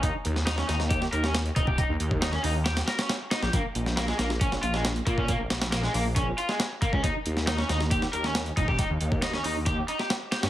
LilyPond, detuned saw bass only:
\new Staff \with { instrumentName = "Detuned saw bass" } { \clef bass \time 4/4 \key ees \mixolydian \tempo 4 = 137 ees,16 r16 ees,8. r16 ees,8. r16 ees,8. r16 ees,,8 | r16 ees,16 ees,8. r16 ees,8. r4. bes,,16 | bes,,16 r16 bes,,8. r16 bes,,8. r16 bes,,8. r16 bes,8 | r16 bes,,16 bes,,8. r16 bes,,8. r4. des,16 |
ees,16 r16 ees,8. r16 ees,8. r16 ees,8. r16 ees,,8 | r16 ees,16 ees,8. r16 ees,8. r4. g,16 | }